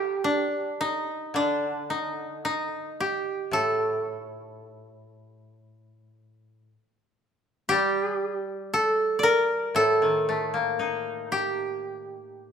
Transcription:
Already playing: G4 A4
0.24 D4
0.81 D#4
1.34 D3 D4
1.90 D#4
2.45 D#4
3.00 G4
3.51 A2 A4
7.69 G3 G4
8.74 A4
9.19 D5
9.23 A#4
9.75 A2 A4
10.02 D#3
10.29 A3
10.54 A#3
10.79 D#4
11.32 G4

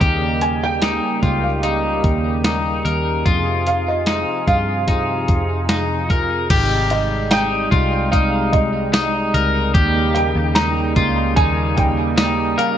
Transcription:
Already playing: D#4
0.01 D#2 C#3 G3 A#3 G4, kick, closed hi-hat
0.41 G#5, closed hi-hat
0.63 G5
0.82 D#4, snare, closed hi-hat
1.23 C#2 F4, kick, closed hi-hat
1.44 F5
1.63 D#4 D#5, closed hi-hat
2.04 D#2, kick, closed hi-hat
2.44 D#4, snare, closed hi-hat
2.85 D#2 A#4, closed hi-hat
3.24 F2 C3 F3 F4 G#4, kick, closed hi-hat
3.67 F5, closed hi-hat
3.88 D#5
4.06 D#4, snare, closed hi-hat
4.47 G2 F4 F5, kick, closed hi-hat
4.88 D#4, kick, closed hi-hat
5.28 F2, kick, closed hi-hat
5.69 D#4, snare, closed hi-hat
6.10 A#4, kick, closed hi-hat
6.50 G#1 C3 G3 G#3 D#4 G4, kick, closed hi-hat, crash
6.90 D#5, closed hi-hat
7.31 D#4 G5, snare, closed hi-hat, tambourine
7.71 C2 F4, kick, closed hi-hat
8.11 D#4 F5, kick, closed hi-hat
8.53 D#5, kick, closed hi-hat
8.93 D#4, snare, closed hi-hat, tambourine
9.34 C#2 A#4, closed hi-hat
9.74 D#2 C#3 G3 A#3 G4, kick, closed hi-hat
10.15 G5, closed hi-hat
10.36 D#2
10.55 D#4 A#5, snare, closed hi-hat, tambourine
10.96 C#2 F4, kick, closed hi-hat
11.36 D#2 D#4 G#5, kick, closed hi-hat
11.77 G5, kick, closed hi-hat
12.17 D#4, snare, closed hi-hat, tambourine
12.58 A#4 F5, closed hi-hat

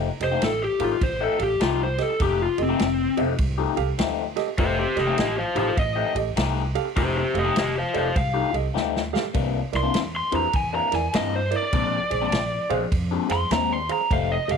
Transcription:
0.20 F1 G4 A4 C5 D#5, snare, ride
0.31 F3 A3 D#4 G4
0.42 A1 A4, snare, ride
0.63 G4
0.79 A1 F3 A3 D#4 G4 A4 F5, ride
0.84 F4
1.01 A1 C5, kick, ride
1.21 F3 A3 D#4 G4 A4
1.39 A1 G4 A4 F5, muted clean electric guitar stroke, ride
1.43 G4
1.60 C2 F3 A3 D#4 F4 G4, snare, ride
1.83 C5
1.98 G4 A4 D#5, snare, ride
2.02 A4
2.10 muted clean electric guitar stroke
2.20 F1 F3 A3 D#4 G4, kick, ride
2.42 F4
2.58 F1 G4 A4 D#5, ride
2.62 C4
2.69 F3 A3 D#4 G4
2.79 F1, snare, ride
3.17 F1 F3 A3 D#4 G4 A4 D#5, ride
3.38 C2, kick, ride
3.58 F3 A3 D#4 G4
3.77 C2 G4 A4 F5, muted clean electric guitar stroke, ride
3.98 D2 F3 A3 D#4 G4, snare, ride
4.36 G4 A4 D#5, snare, ride
4.48 muted clean electric guitar stroke
4.58 F1 F3 A3 D#4 G4 C5, kick, ride
4.80 G4 C5
4.96 F1 G4 A4 D#5, snare, ride
5.07 F3 A3 D#4 G4
5.18 A1 G4 D#5, snare, ride
5.38 C5 F5
5.55 A1 F3 A3 D#4 G4 A4 C5 F5, ride
5.77 A1 D#5, kick, ride
5.96 F3 A3 D#4 G4
6.15 A1 G4 A4 D#5, muted clean electric guitar stroke, ride
6.36 C2 F3 A3 D#4 G4, snare, ride
6.75 G4 A4 F5, ride
6.85 muted clean electric guitar stroke
6.96 F1 F3 A3 D#4 G4 C5, kick, ride
7.18 G4 C5
7.34 F1 G4 A4 F5, ride
7.38 G4 D#5
7.45 F3 A3 D#4 G4
7.56 F1 G4 D#5, snare, ride
7.78 C5 F5
7.93 F1 F3 A3 D#4 G4 A4 D5, ride
7.98 C5 F5
8.16 C2 F5, kick, ride
8.34 F3 A3 D#4 G4
8.52 C2 G4 A4 D#5, muted clean electric guitar stroke, ride
8.74 D2 F3 A3 D#4 G4, snare
8.96 snare
9.13 G4 A4 F5, snare
9.23 muted clean electric guitar stroke
9.34 C2 C3 E3 A#3 D4, kick, ride
9.72 C2 E4 A#4 D5, snare, ride
9.76 C6
9.83 C3 E3 A#3 D4
9.94 snare, ride
10.16 C6
10.32 E2 C3 E3 A#3 D4 E4 A#4 C5, ride
10.36 A#5
10.53 E2 G#5, kick, ride
10.73 C3 E3 A#3 D4 A#5
10.91 E2 E4 A#4 D5, muted clean electric guitar stroke, snare, ride
10.95 G#5
11.13 G2 C3 E3 A#3 D4 D#5, snare, ride
11.36 C5
11.51 E4 A#4 D5, ride
11.56 D5
11.62 muted clean electric guitar stroke
11.73 A#1 A#2 G#3 C4 D4, kick, ride
12.10 A#1 G#4 C5 D5, ride
12.22 A#2 G#3 C4 D4
12.32 A#1, snare, ride
12.69 A#1 A#2 G#3 C4 D4 G#4 C5 F5, ride
12.92 F2, kick, ride
13.11 A#2 G#3 C4 D4
13.29 F2 G#4 C5 F5 C6, muted clean electric guitar stroke, snare, ride
13.51 D#2 A#2 G#3 C4 D4 A#5, snare, ride
13.73 C6
13.89 G#4 C5 F5 A#5, ride
14.00 muted clean electric guitar stroke
14.11 F1 F3 A3 D#4 G4 F5, kick, ride
14.32 D#5
14.48 F1 G4 A4 D#5 F5, ride

